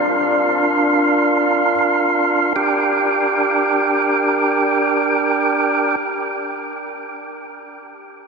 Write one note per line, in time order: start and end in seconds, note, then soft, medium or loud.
0.00 1.72 D4 medium
0.00 2.53 D4 medium
0.00 2.53 F4 soft
0.00 2.53 A#4 soft
0.00 1.71 D5 medium
0.00 2.53 F5 medium
2.56 5.96 D4 soft
2.56 5.96 G4 soft
2.56 5.96 A#4 soft
2.56 5.96 G5 medium